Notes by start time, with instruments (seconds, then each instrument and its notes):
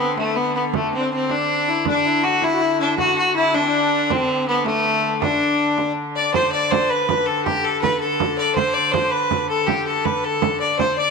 Already playing: hurdy-gurdy D3, fiddle B3, accordion C4
0.18 fiddle A3, accordion A3, frame drum
0.36 fiddle B3, accordion B3, frame drum
0.55 fiddle B3, accordion B3
0.74 fiddle A3, accordion A3, frame drum
0.93 accordion C4, fiddle C4
0.99 accordion D4
1.03 accordion C4
1.12 accordion C4, fiddle C4
1.30 accordion D4, fiddle D4, frame drum
1.67 accordion E4, frame drum
1.85 hurdy-gurdy D3, accordion D4, fiddle D4, frame drum
2.05 accordion E4
2.23 accordion F#4, fiddle F#4, frame drum
2.42 accordion E4, fiddle E4, frame drum
2.54 accordion F#4
2.60 accordion E4, frame drum
2.80 fiddle D4
2.97 accordion F#4, fiddle F#4, frame drum
3.16 accordion F#4, fiddle F#4
3.34 accordion E4, fiddle E4, frame drum
3.53 accordion D4, fiddle D4, frame drum
3.61 accordion C4
3.68 accordion D4
4.09 accordion C4, fiddle C4, frame drum
4.29 accordion C4
4.47 accordion B3, fiddle B3, frame drum
4.65 accordion A3, fiddle A3, frame drum
4.85 frame drum
5.22 fiddle D4, accordion D4, frame drum
5.78 frame drum
6.16 fiddle D5, accordion D5, frame drum
6.33 hurdy-gurdy D3, fiddle C5, accordion C5, frame drum
6.52 fiddle D5, accordion D5
6.71 fiddle C5, frame drum
6.90 fiddle B4, accordion B4, frame drum
7.08 accordion B4, frame drum
7.26 fiddle A4, accordion A4, frame drum
7.45 fiddle G4, accordion G4, frame drum
7.64 accordion A4, fiddle A4
7.81 fiddle B4, frame drum
8.00 fiddle A4, accordion A4, frame drum
8.20 frame drum
8.38 fiddle D5, frame drum
8.55 fiddle C5, accordion C5, frame drum
8.74 fiddle D5
8.91 fiddle C5, accordion C5, frame drum
9.11 fiddle B4, accordion B4, frame drum
9.31 frame drum
9.49 fiddle A4, accordion A4, frame drum
9.67 fiddle G4, accordion G4, frame drum
9.86 accordion A4, fiddle A4, frame drum
10.05 fiddle B4, accordion B4, frame drum
10.23 accordion A4, fiddle A4
10.42 frame drum
10.60 accordion D5, fiddle D5, frame drum
10.79 hurdy-gurdy D3, fiddle C5, accordion C5, frame drum
10.97 accordion D5, fiddle D5